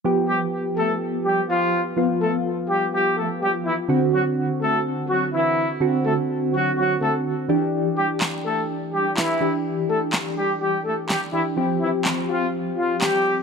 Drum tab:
CP |--------|--------|--------|--------|
SD |--------|--------|--------|--------|

CP |--x---x-|--x---x-|--x---x-|
SD |--o---o-|--o---o-|--o---o-|